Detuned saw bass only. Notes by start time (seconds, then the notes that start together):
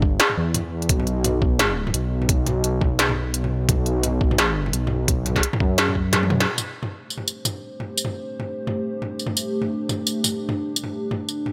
Already playing: G1
0.37 E2
0.90 B1
1.94 B1
2.64 B1
3.69 B1
4.73 B1
5.60 F#2